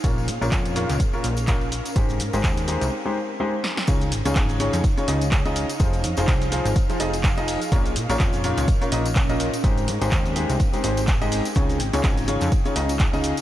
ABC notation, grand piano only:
X:1
M:4/4
L:1/16
Q:"Swing 16ths" 1/4=125
K:Dblyd
V:1 name="Grand piano"
[B,,DFBd]2 z [B,,DFBd]3 [B,,DFBd]2 z [B,,DFBd] z2 [B,,DFBd] z3 | [A,EGAc]2 z [A,EGAc]3 [A,EGAc]2 z [A,EGAc] z2 [A,EGAc] z3 | [D,EFAd]2 z [D,EFAd]3 [D,EFAd]2 z [D,EFAd] [D,EFAe] z2 [D,EFAe]2 z | [F,EFAc]2 z [F,EFAc]3 [F,EFAc]2 z [F,EFAc] [F,EFAe] z2 [F,EFAe]2 z |
[B,,DFBd]2 z [B,,DFBd]3 [B,,DFBd]2 z [B,,DFBd] [B,,DFBe] z2 [B,,DFBe]2 z | [A,EGAc]2 z [A,EGAc]3 [A,EGAc]2 z [A,EGAc] [A,EGAc] z2 [A,EGAe]2 z | [D,EFAd]2 z [D,EFAd]3 [D,EFAd]2 z [D,EFAd] [D,EFAe] z2 [D,EFAe]2 z |]